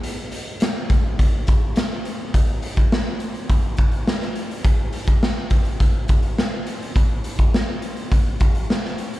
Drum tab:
HH |x-x-x-x-x-x-x-x-|xxxx--xxxxxx-xxx|x-xx--xxx-xx--xx|xxxx--xxxxxx--xx|
SD |----o-------o---|----o-------oo--|----o-------o---|----o-------oo--|
BD |------o-o-o-----|o--o----o-o-----|o--o--o-o-o-----|o--o----o-o-----|